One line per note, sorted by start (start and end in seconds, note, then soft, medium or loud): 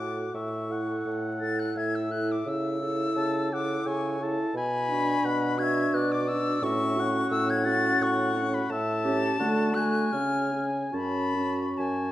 0.00 0.26 A2 medium
0.00 0.34 F#4 soft
0.00 0.34 A4 soft
0.00 0.35 F#5 medium
0.00 0.36 D6 medium
0.34 0.97 A2 medium
0.34 0.73 E5 medium
0.34 1.16 C#6 medium
0.69 1.40 E4 medium
0.69 1.40 A4 medium
0.69 1.79 F#5 medium
1.06 1.69 A2 medium
1.41 2.11 E4 medium
1.41 2.11 A4 medium
1.41 1.61 A6 loud
1.59 1.76 F#6 medium
1.76 2.38 A2 medium
1.76 2.91 E5 medium
1.76 1.97 G#6 medium
1.95 2.13 E6 medium
2.11 2.46 E4 medium
2.11 2.46 A4 medium
2.11 2.33 F#6 medium
2.31 2.50 D6 medium
2.46 3.08 C#3 medium
2.46 2.81 E4 medium
2.46 2.81 A4 medium
2.46 3.52 E6 loud
2.81 3.51 E4 medium
2.81 3.51 A4 medium
3.16 3.78 C#3 medium
3.16 3.55 A5 medium
3.52 4.20 E4 medium
3.52 4.21 A4 medium
3.52 3.88 F#5 medium
3.52 3.89 D6 loud
3.86 4.37 C#3 medium
3.86 4.25 G#5 medium
3.86 4.22 C#6 medium
4.20 4.55 E4 medium
4.20 4.55 A4 medium
4.20 4.57 A5 medium
4.54 5.16 B2 medium
4.54 5.27 G#5 loud
4.54 5.60 B5 loud
4.90 5.58 D4 medium
4.90 5.58 F#4 medium
5.24 5.86 B2 medium
5.24 5.64 F#5 medium
5.58 6.28 D4 medium
5.58 6.27 F#4 medium
5.58 5.95 G#6 loud
5.63 5.98 E5 medium
5.94 6.55 B2 medium
5.94 6.64 D5 medium
5.94 6.13 F#6 loud
6.12 6.30 D6 loud
6.28 6.62 D4 medium
6.28 6.62 F#4 medium
6.28 6.65 E6 loud
6.62 7.23 A2 medium
6.62 6.95 C#4 medium
6.62 6.96 F#4 medium
6.62 7.01 E5 medium
6.62 7.30 C#6 loud
6.96 7.65 C#4 medium
6.96 7.65 F#4 medium
6.96 8.71 F#5 loud
7.31 7.93 A2 loud
7.31 7.51 E6 loud
7.50 7.67 G#6 loud
7.65 8.35 C#4 medium
7.65 8.34 F#4 medium
7.65 8.04 A6 loud
8.01 8.62 A2 medium
8.01 8.56 C#6 loud
8.35 8.70 C#4 medium
8.35 8.69 F#4 medium
8.54 8.72 B5 loud
8.70 9.31 A2 medium
8.70 9.15 E5 medium
8.70 9.76 A5 loud
9.04 9.39 C#4 medium
9.04 9.38 G4 medium
9.39 10.05 D3 medium
9.39 9.75 A3 medium
9.39 9.73 F#4 medium
9.39 9.79 F#5 medium
9.74 10.13 A3 medium
9.74 10.11 F#4 medium
9.74 10.96 G#5 medium
9.74 10.14 F#6 loud
10.12 10.85 C#3 medium
10.12 10.53 C#4 medium
10.12 10.52 G#4 medium
10.12 10.65 F6 loud
10.52 10.93 C#4 medium
10.52 10.92 G#4 medium
10.92 11.68 F#2 medium
10.92 11.36 C#4 medium
10.92 11.35 F#4 medium
10.92 11.70 A5 medium
10.92 11.79 B5 loud
11.36 12.12 C#4 medium
11.36 12.12 F#4 medium
11.77 12.12 F#2 medium
11.77 12.12 G#5 medium
11.77 12.12 A5 medium